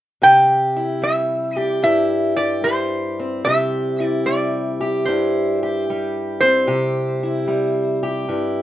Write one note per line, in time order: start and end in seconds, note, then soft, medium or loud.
0.22 1.83 C3 medium
0.22 1.56 G4 medium
0.22 0.99 G5 loud
0.77 1.83 E4 medium
1.02 2.64 G3 medium
1.02 1.58 E5 medium
1.57 2.37 G4 medium
1.57 1.80 D5 medium
1.83 3.45 G2 medium
1.83 4.00 E4 medium
1.83 2.36 E5 medium
2.36 3.46 G4 medium
2.36 2.65 D5 medium
2.64 4.26 G3 medium
2.64 3.47 C5 medium
3.19 6.42 C4 medium
3.45 5.07 C3 medium
3.45 4.80 G4 medium
3.45 4.06 E5 medium
4.00 5.08 E4 medium
4.06 4.26 D5 medium
4.26 5.89 G3 medium
4.26 5.09 D5 medium
4.81 5.62 G4 medium
5.05 6.69 G2 medium
5.05 7.23 E4 medium
5.05 5.83 C5 medium
5.63 6.68 G4 medium
5.90 7.47 G3 medium
6.40 8.62 C4 medium
6.40 7.99 C5 loud
6.67 8.29 C3 medium
6.67 8.02 G4 medium
7.23 8.28 E4 medium
7.48 8.62 G3 medium
8.03 8.62 G4 medium
8.28 8.62 G2 medium
8.28 8.62 E4 medium